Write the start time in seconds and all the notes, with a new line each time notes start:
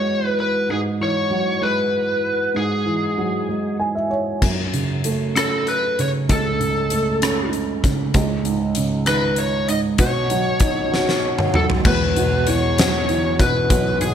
Already playing: G#2 E3 F#3 G#3 C#5
0.27 B4
0.40 B4
0.70 G#2 G#4
1.00 E3 C#5
1.30 F#3
1.61 G#3 B4
2.55 G#2 G#4
2.85 E3
3.17 F#3
3.49 G#3
3.80 G#5
3.95 E5
4.10 C#5
4.42 F#2, kick, crash
4.74 C#3, closed hi-hat
5.04 A3, closed hi-hat
5.36 C#4 A4, cross-stick, closed hi-hat
5.67 B4, closed hi-hat
5.99 C#3 C#5, closed hi-hat
6.29 C#2 A4, kick, closed hi-hat
6.60 C#3, closed hi-hat
6.90 A3, closed hi-hat
7.22 C#4, cross-stick, closed hi-hat
7.53 closed hi-hat
7.84 C#3, kick, closed hi-hat
8.14 C#2, kick, closed hi-hat
8.45 G#2, closed hi-hat
8.75 C#3, closed hi-hat
9.06 D#3 B4, cross-stick, closed hi-hat
9.36 C#5, closed hi-hat
9.68 G#2 D#5, closed hi-hat
9.98 B2 C#5, kick, closed hi-hat
10.30 F#3, closed hi-hat
10.60 D#4, kick, closed hi-hat
10.92 F#4, snare
11.09 snare
11.38 mid tom
11.54 F#3 A4, mid tom
11.70 floor tom
11.85 E1 E2 B4, kick, crash
12.16 B2, closed hi-hat
12.47 E3 C#5, closed hi-hat
12.78 F#3, snare, closed hi-hat
13.09 E3, closed hi-hat
13.40 B2 B4, kick, closed hi-hat
13.70 B1, kick, closed hi-hat
14.01 B2 G#4, closed hi-hat